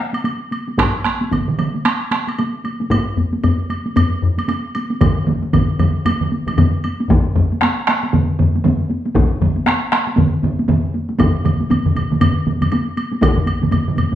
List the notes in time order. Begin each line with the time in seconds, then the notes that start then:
0.13 taiko high, high woodblock
0.24 taiko high, high woodblock
0.51 taiko high, high woodblock
0.68 taiko high
0.78 taiko rim, taiko, taiko high, high woodblock
1.05 taiko rim, taiko high
1.21 taiko high
1.31 taiko, taiko mid, taiko high, high woodblock
1.48 taiko mid
1.59 taiko mid, taiko high, high woodblock
1.74 taiko high
1.85 taiko rim, taiko high, high woodblock
2.11 taiko rim, taiko high
2.28 taiko high, high woodblock
2.38 taiko high, high woodblock
2.64 taiko high, high woodblock
2.80 taiko high
2.90 taiko, taiko high, high woodblock
3.17 taiko low-mid, taiko high
3.33 taiko high
3.43 taiko low-mid, taiko high, high woodblock
3.70 taiko high, high woodblock
3.86 taiko high
3.96 taiko low-mid, taiko high, high woodblock
4.22 taiko low-mid
4.39 taiko high, high woodblock
4.49 taiko high, high woodblock
4.75 taiko high, high woodblock
4.91 taiko high
5.01 taiko, taiko low-mid, taiko mid, taiko high, high woodblock
5.27 taiko low-mid, taiko mid, taiko high
5.43 taiko high
5.53 taiko, taiko low-mid, taiko mid, taiko high, high woodblock
5.79 taiko low-mid, taiko mid, taiko high, high woodblock
6.05 taiko low-mid, taiko mid, taiko high, high woodblock
6.21 taiko low-mid, taiko mid
6.32 taiko high
6.47 taiko low-mid, taiko mid, taiko high, high woodblock
6.57 taiko low-mid, taiko mid, taiko high, high woodblock
6.84 taiko high, high woodblock
7.00 taiko high
7.09 taiko, taiko low-mid, taiko mid, taiko high
7.35 taiko low-mid, taiko mid, taiko high
7.52 taiko high
7.61 taiko rim, taiko high
7.87 taiko rim, taiko high
8.03 taiko high
8.13 taiko low-mid, taiko mid, taiko high
8.39 taiko low-mid, taiko mid, taiko high
8.55 taiko high
8.65 taiko low-mid, taiko mid, taiko high
8.91 taiko high
9.05 taiko high
9.15 taiko, taiko low-mid, taiko mid, taiko high
9.41 taiko low-mid, taiko mid, taiko high
9.56 taiko high
9.66 taiko rim, taiko high
9.92 taiko rim, taiko high
10.07 taiko high
10.17 taiko low-mid, taiko mid, taiko high
10.43 taiko low-mid, taiko mid, taiko high
10.59 taiko high
10.68 taiko low-mid, taiko mid, taiko high
10.94 taiko high
11.09 taiko high
11.19 taiko, taiko low-mid, taiko mid, taiko high, high woodblock
11.44 taiko low-mid, taiko mid, taiko high, high woodblock
11.60 taiko high
11.70 taiko low-mid, taiko mid, taiko high, high woodblock
11.85 taiko low-mid, taiko mid
11.96 taiko low-mid, taiko mid, taiko high, high woodblock
12.10 taiko low-mid, taiko mid, taiko high
12.20 taiko low-mid, taiko mid, taiko high, high woodblock
12.46 taiko low-mid, taiko mid, taiko high
12.61 taiko low-mid, taiko mid, taiko high, high woodblock
12.72 taiko high, high woodblock
12.97 taiko high, high woodblock
13.12 taiko high
13.21 taiko, taiko low-mid, taiko mid, taiko high, high woodblock
13.37 taiko low-mid, taiko mid
13.46 taiko high, high woodblock
13.62 taiko low-mid, taiko mid, taiko high
13.71 taiko low-mid, taiko mid, taiko high, high woodblock
13.88 taiko low-mid, taiko mid
13.96 taiko low-mid, taiko mid, taiko high, high woodblock
14.12 taiko high